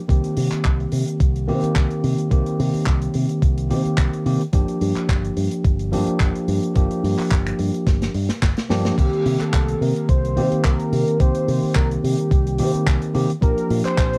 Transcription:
0.08 C2 D#3 A#3 C4 G4, kick, closed hi-hat
0.24 closed hi-hat
0.37 C3, open hi-hat
0.52 muted fingered electric bass stroke, clap, closed hi-hat
0.65 C2, kick, clap, closed hi-hat
0.80 closed hi-hat
0.92 C3, open hi-hat
1.08 closed hi-hat
1.20 C2, kick, closed hi-hat
1.36 closed hi-hat
1.47 C3 D#3 A#3 C4 G4, open hi-hat
1.63 muted fingered electric bass stroke, closed hi-hat
1.76 C2, finger snap, kick, clap, closed hi-hat
1.91 closed hi-hat
2.04 C3, open hi-hat
2.18 closed hi-hat
2.30 C2 D#3 A#3 C4 G4, kick, closed hi-hat
2.46 closed hi-hat
2.59 C3, open hi-hat
2.74 muted fingered electric bass stroke, open hi-hat
2.86 C2, kick, clap, closed hi-hat
3.02 closed hi-hat
3.14 C3, open hi-hat
3.29 closed hi-hat
3.42 C2, kick, closed hi-hat
3.58 closed hi-hat
3.70 C3 D#3 A#3 C4 G4, open hi-hat
3.85 muted fingered electric bass stroke, closed hi-hat
3.98 C2, finger snap, kick, clap, closed hi-hat
4.14 closed hi-hat
4.25 C3 D#3 A#3 C4 G4, open hi-hat
4.41 closed hi-hat
4.53 G1 F3 A#3 D4 G4, kick, closed hi-hat
4.68 closed hi-hat
4.81 G2, open hi-hat
4.96 muted fingered electric bass stroke, clap, closed hi-hat
5.09 G1, kick, clap, closed hi-hat
5.25 closed hi-hat
5.37 G2, open hi-hat
5.51 closed hi-hat
5.64 G1, kick, closed hi-hat
5.79 closed hi-hat
5.91 G2 F3 A#3 D4 G4, open hi-hat
6.07 muted fingered electric bass stroke, closed hi-hat
6.20 G1, finger snap, kick, clap, closed hi-hat
6.35 closed hi-hat
6.48 G2, open hi-hat
6.63 closed hi-hat
6.75 G1 F3 A#3 D4 G4, kick, closed hi-hat
6.91 closed hi-hat
7.04 G2, open hi-hat
7.19 muted fingered electric bass stroke, clap, open hi-hat
7.31 G1, kick, clap, closed hi-hat
7.47 finger snap, closed hi-hat
7.59 G2, open hi-hat
7.74 closed hi-hat
7.87 G1, kick, snare, closed hi-hat
8.02 snare, closed hi-hat
8.14 G2, open hi-hat
8.29 muted fingered electric bass stroke, snare, closed hi-hat
8.42 G1, kick, snare, clap, closed hi-hat
8.57 snare, closed hi-hat
8.70 G2 F3 A#3 D4 G4, snare, open hi-hat
8.85 snare, closed hi-hat
8.97 C2 D#3 C4 G4, kick, closed hi-hat, crash
9.13 closed hi-hat
9.26 C3, open hi-hat
9.41 A4, muted fingered electric bass stroke, clap, closed hi-hat
9.53 C2, kick, clap, closed hi-hat
9.68 closed hi-hat
9.81 C3 A#4, open hi-hat
9.96 closed hi-hat
10.09 C2 C5, kick, closed hi-hat
10.25 closed hi-hat
10.36 C3 D#3 A#3 C4 G4, open hi-hat
10.52 muted fingered electric bass stroke, closed hi-hat
10.64 C2 A#4, finger snap, kick, clap, closed hi-hat
10.80 closed hi-hat
10.92 C3, open hi-hat
11.08 closed hi-hat
11.19 C2 D#3 A#3 C4 G4 C5, kick, closed hi-hat
11.35 closed hi-hat
11.48 C3, open hi-hat
11.63 muted fingered electric bass stroke, open hi-hat
11.75 C2 A#4, kick, clap, closed hi-hat
11.91 closed hi-hat
12.04 C3 G4, open hi-hat
12.18 closed hi-hat
12.31 C2, kick, closed hi-hat
12.47 closed hi-hat
12.58 C3 D#3 A#3 C4 G4, open hi-hat
12.74 muted fingered electric bass stroke, closed hi-hat
12.87 C2, finger snap, kick, clap, closed hi-hat
13.02 closed hi-hat
13.14 C3 D#3 A#3 C4 G4, open hi-hat
13.30 closed hi-hat
13.41 A#1 F3 A#3 D4 G4 A#4, kick, closed hi-hat
13.58 closed hi-hat
13.70 A#2, open hi-hat
13.85 C5, muted fingered electric bass stroke, clap, closed hi-hat
13.98 A#1, kick, clap, closed hi-hat
14.13 closed hi-hat

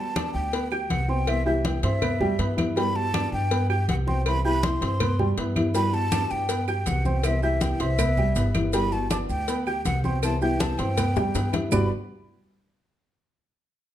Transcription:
Already playing: F#4 A5
0.00 B3
0.16 G3 B3 D4 F#4 D5 D6, cowbell, high conga, claves
0.34 D2 G5
0.53 B3 B4 B5, muted nylon-string guitar stroke, cowbell, high conga
0.71 G4 G5 G6, high conga, claves
0.90 C2 G3 B3 F#4 F#5, cowbell, high conga
1.08 B3 C4 F#4 C5 G5 C6
1.27 C3 E3 G3 B3 E4 E5, cowbell, high conga, claves
1.46 E3 G3 B3 E4 G4 E5 G5 G6, high conga
1.64 E3 G3 B3 E4 G5, cowbell, high conga
1.83 G2 C4 C5 E5 C6, cowbell, high conga
2.02 B3 B4 B5, muted nylon-string guitar stroke, cowbell, high conga, low conga, claves
2.20 F#2 G3 G4 G5, high conga, low conga
2.39 G2 E3 G3 B3 E4 B4 B5, cowbell, high conga
2.57 E3 G3 B3 E4, cowbell, high conga, claves
2.76 G3 B3 F#4 G4 G5 B5, cowbell, high conga
2.95 B3 F#4 A5, high conga
3.13 G3 B3 D4 F#4 D5 D6, cowbell, high conga, claves
3.32 G2 G5
3.51 B3 B4 B5, muted nylon-string guitar stroke, cowbell, high conga
3.69 G4 G5 G6, high conga, claves
3.88 C2 G3 B3 F#4 F#5, cowbell, high conga
4.07 B3 C4 F#4 C5 G5 C6, high conga
4.26 C3 E3 G3 B3 E4 B5, cowbell, high conga, claves
4.44 E3 G3 B3 E4 G4 G5 B5 G6, high conga
4.63 E3 G3 B3 E4 C6, cowbell, high conga
4.81 G2 C4 C5 C6, cowbell, high conga
5.00 B3 B4 B5, muted nylon-string guitar stroke, cowbell, high conga, low conga, claves
5.19 G3 G4 G5, high conga, low conga
5.37 G2 E3 G3 B3 E4 B4 B5, cowbell, high conga
5.56 E3 G3 B3 E4, cowbell, high conga, claves
5.74 G3 B3 F#4 G4 G5 B5, cowbell, high conga, maracas
5.93 B3 F#4 A5, high conga, maracas
6.12 G3 B3 D4 F#4 D5 D6, cowbell, high conga, claves, maracas
6.31 G2 G5, maracas
6.49 B3 B4 B5, muted nylon-string guitar stroke, cowbell, high conga, maracas
6.68 G4 G5 G6, high conga, claves, maracas
6.86 C2 G3 B3 F#4 F#5, cowbell, high conga, maracas
7.05 B3 C4 F#4 C5 G5 C6, high conga, maracas
7.23 C3 E3 G3 B3 E4 E5, cowbell, high conga, claves, maracas
7.42 E3 G3 B3 E4 G4 E5 G5 G6, high conga, maracas
7.61 E3 G3 B3 E4 G5, cowbell, high conga, maracas
7.80 C2 C4 C5 E5 C6, cowbell, high conga, maracas
7.99 B3 B4 B5, muted nylon-string guitar stroke, cowbell, high conga, low conga, claves, maracas
8.17 G3 G4 G5, high conga, low conga, maracas
8.36 G1 E3 G3 B3 E4 B4 B5, cowbell, high conga, maracas
8.54 E3 G3 B3 E4, cowbell, high conga, claves, maracas
8.73 G3 B3 F#4 G4 G5 B5, cowbell, high conga, maracas
8.92 B3 F#4 A5, high conga, maracas
9.10 G3 B3 D4 F#4 D5 A5 D6, cowbell, high conga, claves, maracas
9.30 D2 G5, maracas
9.48 B3 B4 B5, muted nylon-string guitar stroke, cowbell, high conga, maracas
9.67 G4 G5 G6, high conga, claves, maracas
9.85 C2 G3 B3 F#4 F#5, cowbell, high conga, maracas
10.04 B3 C4 F#4 C5 G5 C6, high conga, maracas
10.22 C3 E3 G3 B3 E4 A5, cowbell, high conga, claves, maracas
10.41 E3 G3 B3 E4 G4 G5 G6, high conga, maracas
10.60 E3 G3 B3 A5, cowbell, high conga, maracas
10.78 G2 C4 C5 G5 C6, cowbell, high conga, maracas
10.97 B3 B4 B5, muted nylon-string guitar stroke, cowbell, high conga, low conga, claves, maracas
11.16 F#2 G3 G4 G5, high bongo, high conga, low conga, maracas
11.34 G2 E3 G3 B3 E4 B4 B5, cowbell, low bongo, maracas
11.53 E3 G3 B3 E4, cowbell, low bongo, high conga, claves, maracas
11.71 G1 G3 B3 D4 F#4 G4 B4 D5 B5, low bongo, low conga, claves, maracas

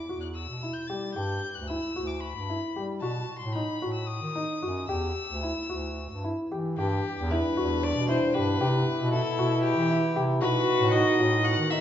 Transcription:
Already playing: D6
0.09 E2 F#4
0.21 F#6
0.34 E6
0.49 B2
0.63 E4
0.73 G6
0.87 G3 G4 A6
1.14 G2 G4 G6
1.55 D2 F#6
1.67 E4 E6
1.96 D2 F#4
2.07 D6
2.20 B5
2.36 G2
2.49 E4
2.76 G3 G4
3.00 B2 F#4 A5
3.38 A2 C6
3.53 D#4 B5
3.82 A2 F#4
3.93 E6
4.06 D#6
4.22 D#3
4.35 D#4
4.62 F#2 F#4
4.87 E2 G4 E6
5.29 D2
5.43 E4
5.69 D2 F#4
6.10 G2
6.24 E4
6.51 E3 G4
6.77 G2 E3 G3 B3 D4 G4
7.17 E2
7.30 E4 B4
7.56 E2 F#4
7.83 D5
7.96 B2
8.09 E4 C5
8.34 G2 G4 B4
8.60 B2 C3 E4 G4
8.99 B2
9.12 E4 A4
9.38 B2 F#4
9.63 G4
9.77 E3
9.90 E4
10.15 C3 G4
10.41 B2 A3 D#4 F#4 B4
10.80 A2
10.92 D#4 D#5
11.19 A2 F#4
11.45 F#5
11.58 D#3
11.70 D#4 E5

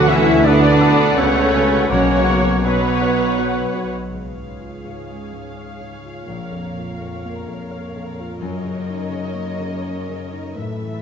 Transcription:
Already playing: D2 B2 A3 F#4 A4 B4 F#5
0.07 E3 B3 C#4 E4 F#4 A4 E5
0.44 D3 B3 D4 F#4 A4 B4 D5 F#5
0.62 B5
0.80 B3 F#4 A4 F#5
0.99 A5
1.16 C#2 C#3 A3 B3 C#4 F#4 A4 C#5 F#5
1.53 B3 F#4 A4
1.72 F#4
1.89 B1 B2 C#3 A#3 C#4 F#4 C#5 F#5
2.09 F#3
2.28 B2 C#4 F#4 C#5
2.46 F#4
2.63 B2 F#3 B3 F#4 B4 C#5 F#5
2.82 B4
3.00 B3 F#4 C#5 F#5
3.18 C#6
3.37 B3 F#4 C#5 F#5
3.55 B4
3.74 B3 F#4 C#5
3.93 F#4
4.11 C#2 C#3 G#4 C#5 F5
4.35 G#2
4.49 G#3
4.60 F4
4.84 G#2 C#5
5.08 G#3
5.22 G#4
5.33 G#2
5.57 C#5 F5
5.81 G#2
5.93 G#4
6.04 F4
6.26 A#1 A#2 A#4
6.51 F2
6.65 A#3
6.77 F4
6.99 F2 C#5
7.25 A#3
7.36 A#4
7.47 F2
7.71 C#5 F5
7.96 F2
8.06 A#4
8.19 F4
8.40 F#2 C#5 D#5
8.63 C#3
8.77 A#3
8.89 D#4
9.10 C#3 C#5
9.34 A#3
9.47 A#4
9.59 C#3
9.84 C#5 D#5
10.08 C#3
10.21 A#4
10.32 D#4
10.56 A2 A4 B4 E5
10.82 E3
10.94 A3

